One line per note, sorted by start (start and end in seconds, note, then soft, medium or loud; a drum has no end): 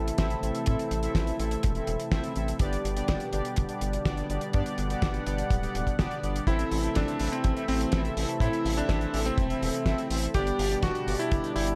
0.00 0.12 A1 medium
0.00 2.57 C3 medium
0.00 2.57 E3 medium
0.00 2.57 A3 medium
0.00 0.16 C4 medium
0.00 0.16 E4 medium
0.00 2.57 E4 medium
0.00 0.16 A4 medium
0.00 2.57 A4 medium
0.00 0.16 E5 medium
0.08 closed hi-hat medium
0.18 0.36 A1 medium
0.18 0.40 C4 medium
0.18 0.40 E4 medium
0.18 0.40 A4 medium
0.18 0.40 E5 loud
0.18 kick loud
0.18 snare loud
0.18 closed hi-hat loud
0.30 closed hi-hat medium
0.43 0.51 A1 medium
0.43 0.64 C4 medium
0.43 0.64 E4 medium
0.43 0.64 A4 medium
0.43 0.64 E5 medium
0.43 closed hi-hat medium
0.55 closed hi-hat medium
0.66 0.76 A2 medium
0.66 1.00 C4 loud
0.66 1.00 E4 medium
0.66 1.00 A4 medium
0.66 1.00 E5 loud
0.66 kick loud
0.66 closed hi-hat loud
0.79 closed hi-hat medium
0.91 1.08 A1 medium
0.91 closed hi-hat medium
1.03 1.37 C4 medium
1.03 1.37 E4 medium
1.03 1.37 A4 medium
1.03 1.37 E5 loud
1.03 closed hi-hat medium
1.15 1.32 A1 medium
1.15 kick loud
1.15 snare loud
1.15 closed hi-hat loud
1.27 closed hi-hat medium
1.39 1.57 A1 medium
1.39 1.73 C4 medium
1.39 1.73 E4 medium
1.39 1.73 A4 medium
1.39 1.73 E5 loud
1.39 closed hi-hat medium
1.51 closed hi-hat medium
1.63 1.81 E1 medium
1.63 kick loud
1.63 closed hi-hat loud
1.75 2.09 C4 medium
1.75 2.09 E4 medium
1.75 2.09 A4 medium
1.75 2.09 E5 medium
1.75 closed hi-hat medium
1.87 1.96 E1 medium
1.87 closed hi-hat medium
2.00 closed hi-hat medium
2.12 2.20 A1 loud
2.12 2.33 C4 loud
2.12 2.33 E4 medium
2.12 2.33 A4 medium
2.12 2.33 E5 loud
2.12 kick loud
2.12 snare loud
2.12 closed hi-hat medium
2.24 closed hi-hat medium
2.36 2.53 A1 medium
2.36 2.58 C4 medium
2.36 2.58 E4 medium
2.36 2.58 A4 medium
2.36 2.58 E5 medium
2.36 closed hi-hat medium
2.48 closed hi-hat medium
2.59 2.77 G1 medium
2.59 6.44 B2 medium
2.59 6.44 D3 medium
2.59 6.44 G3 medium
2.59 2.94 B3 loud
2.59 6.44 D4 medium
2.59 2.94 D4 medium
2.59 4.52 G4 medium
2.59 2.94 G4 medium
2.59 2.94 D5 loud
2.59 kick loud
2.59 closed hi-hat loud
2.73 closed hi-hat medium
2.85 3.02 G1 medium
2.85 closed hi-hat medium
2.97 3.30 B3 medium
2.97 3.30 D4 medium
2.97 3.30 G4 medium
2.97 3.30 D5 loud
2.97 closed hi-hat medium
3.08 3.17 G1 loud
3.08 kick loud
3.08 snare loud
3.08 closed hi-hat medium
3.20 closed hi-hat medium
3.33 3.42 G1 medium
3.33 3.66 B3 medium
3.33 3.66 D4 medium
3.33 3.66 G4 medium
3.33 3.66 D5 medium
3.33 closed hi-hat medium
3.45 closed hi-hat medium
3.56 3.66 G1 loud
3.56 kick loud
3.56 closed hi-hat loud
3.69 4.03 B3 medium
3.69 4.03 D4 medium
3.69 4.03 G4 medium
3.69 4.03 D5 medium
3.69 closed hi-hat medium
3.81 3.99 G1 medium
3.81 closed hi-hat medium
3.93 closed hi-hat medium
4.05 4.23 G1 medium
4.05 4.27 B3 medium
4.05 4.27 D4 medium
4.05 4.27 G4 medium
4.05 4.27 D5 loud
4.05 kick loud
4.05 snare loud
4.05 closed hi-hat loud
4.17 closed hi-hat medium
4.30 4.38 G1 medium
4.30 4.51 B3 medium
4.30 4.51 D4 medium
4.30 4.51 G4 medium
4.30 4.51 D5 medium
4.30 closed hi-hat medium
4.41 closed hi-hat medium
4.53 4.63 G2 medium
4.53 4.87 B3 medium
4.53 4.87 D4 medium
4.53 4.87 G4 medium
4.53 4.87 D5 loud
4.53 6.46 F#5 medium
4.53 kick loud
4.53 closed hi-hat medium
4.66 closed hi-hat medium
4.78 4.95 G1 medium
4.78 closed hi-hat medium
4.90 5.24 B3 medium
4.90 5.24 D4 medium
4.90 5.24 G4 medium
4.90 5.24 D5 loud
4.90 closed hi-hat medium
5.02 5.19 G1 medium
5.02 kick loud
5.02 snare loud
5.02 closed hi-hat medium
5.14 closed hi-hat soft
5.26 5.44 G1 medium
5.26 5.60 B3 medium
5.26 5.60 D4 medium
5.26 5.60 G4 medium
5.26 5.60 D5 medium
5.26 closed hi-hat medium
5.38 closed hi-hat soft
5.51 5.68 D1 medium
5.51 kick loud
5.51 closed hi-hat loud
5.63 5.96 B3 medium
5.63 5.96 D4 medium
5.63 5.96 G4 medium
5.63 5.96 D5 medium
5.63 closed hi-hat soft
5.75 5.84 D1 loud
5.75 closed hi-hat medium
5.87 kick medium
5.87 closed hi-hat soft
5.99 6.08 G1 medium
5.99 6.20 B3 medium
5.99 6.20 D4 medium
5.99 6.20 G4 medium
5.99 6.20 D5 loud
5.99 kick loud
5.99 snare loud
5.99 closed hi-hat medium
6.11 closed hi-hat medium
6.23 6.41 G1 medium
6.23 6.45 B3 medium
6.23 6.45 D4 medium
6.23 6.45 G4 medium
6.23 6.45 D5 medium
6.23 closed hi-hat medium
6.36 closed hi-hat medium
6.47 6.64 A1 loud
6.47 10.31 C3 medium
6.47 10.31 E3 medium
6.47 10.31 A3 medium
6.47 6.81 C4 loud
6.47 6.81 E4 medium
6.47 10.31 E4 medium
6.47 6.87 E4 medium
6.47 6.81 A4 medium
6.47 10.31 A4 medium
6.47 6.81 E5 loud
6.47 kick loud
6.47 closed hi-hat medium
6.59 closed hi-hat medium
6.71 6.89 A1 medium
6.71 open hi-hat loud
6.83 7.17 C4 medium
6.83 7.17 E4 medium
6.83 7.17 A4 medium
6.83 7.17 E5 loud
6.83 closed hi-hat medium
6.95 7.05 A1 loud
6.95 7.26 D4 medium
6.95 kick loud
6.95 snare loud
6.95 closed hi-hat loud
7.08 closed hi-hat medium
7.19 7.29 A1 medium
7.19 7.53 C4 medium
7.19 7.53 E4 medium
7.19 7.53 A4 medium
7.19 7.53 E5 medium
7.19 open hi-hat medium
7.32 7.62 C4 medium
7.32 closed hi-hat medium
7.44 7.53 A1 loud
7.44 kick loud
7.44 closed hi-hat medium
7.56 7.90 C4 medium
7.56 7.90 E4 medium
7.56 7.90 A4 medium
7.56 7.90 E5 medium
7.56 closed hi-hat medium
7.68 7.86 A1 medium
7.68 7.98 C4 medium
7.68 open hi-hat loud
7.81 closed hi-hat medium
7.92 8.10 A1 medium
7.92 8.14 C4 medium
7.92 8.14 E4 medium
7.92 8.14 A4 medium
7.92 8.14 E5 loud
7.92 kick loud
7.92 snare loud
7.92 closed hi-hat medium
8.05 closed hi-hat soft
8.17 8.25 A1 medium
8.17 8.38 C4 medium
8.17 8.38 E4 medium
8.17 8.38 A4 medium
8.17 8.38 E5 medium
8.17 open hi-hat loud
8.29 closed hi-hat medium
8.40 8.49 A2 medium
8.40 8.74 C4 loud
8.40 8.74 E4 medium
8.40 8.71 E4 medium
8.40 8.74 A4 medium
8.40 8.74 E5 loud
8.40 kick loud
8.40 closed hi-hat medium
8.53 closed hi-hat medium
8.65 8.82 A1 medium
8.65 open hi-hat loud
8.77 9.11 C4 medium
8.77 9.17 D4 medium
8.77 9.11 E4 medium
8.77 9.11 A4 medium
8.77 9.11 E5 loud
8.77 closed hi-hat medium
8.89 9.07 A1 medium
8.89 kick loud
8.89 snare loud
8.89 closed hi-hat medium
9.01 closed hi-hat medium
9.14 9.31 A1 medium
9.14 9.47 C4 medium
9.14 9.47 E4 medium
9.14 9.47 A4 medium
9.14 9.47 E5 loud
9.14 open hi-hat loud
9.25 10.25 C4 medium
9.25 closed hi-hat medium
9.38 9.55 E1 medium
9.38 kick loud
9.38 closed hi-hat medium
9.50 9.83 C4 medium
9.50 9.83 E4 medium
9.50 9.83 A4 medium
9.50 9.83 E5 medium
9.50 closed hi-hat soft
9.62 9.71 E1 loud
9.62 open hi-hat loud
9.74 closed hi-hat medium
9.86 9.95 A1 loud
9.86 10.07 C4 medium
9.86 10.08 E4 medium
9.86 10.08 A4 medium
9.86 10.08 E5 loud
9.86 kick loud
9.86 snare loud
9.86 closed hi-hat medium
9.98 closed hi-hat medium
10.10 10.28 A1 medium
10.10 10.32 C4 medium
10.10 10.32 E4 medium
10.10 10.32 A4 medium
10.10 10.32 E5 medium
10.10 open hi-hat loud
10.23 closed hi-hat soft
10.34 10.52 G1 loud
10.34 11.75 B2 medium
10.34 11.75 D3 medium
10.34 11.75 G3 medium
10.34 10.68 B3 loud
10.34 10.68 D4 medium
10.34 11.75 D4 medium
10.34 10.68 G4 medium
10.34 10.74 G4 loud
10.34 11.75 G4 medium
10.34 10.68 D5 loud
10.34 kick loud
10.34 closed hi-hat medium
10.47 closed hi-hat medium
10.59 10.76 G1 medium
10.59 open hi-hat loud
10.71 11.04 B3 medium
10.71 11.04 D4 medium
10.71 11.04 G4 medium
10.71 11.04 D5 loud
10.71 closed hi-hat medium
10.83 10.92 G1 loud
10.83 11.13 F#4 loud
10.83 kick loud
10.83 snare loud
10.83 closed hi-hat loud
10.95 closed hi-hat soft
11.07 11.16 G1 medium
11.07 11.41 B3 medium
11.07 11.41 D4 medium
11.07 11.41 G4 medium
11.07 11.41 D5 loud
11.07 open hi-hat loud
11.19 11.49 E4 medium
11.19 closed hi-hat medium
11.32 11.40 G1 loud
11.32 kick loud
11.32 closed hi-hat medium
11.43 11.75 B3 medium
11.43 11.75 D4 medium
11.43 11.75 G4 medium
11.43 11.75 D5 medium
11.43 closed hi-hat medium
11.56 11.73 G1 medium
11.56 11.75 E4 medium
11.56 open hi-hat loud
11.67 closed hi-hat soft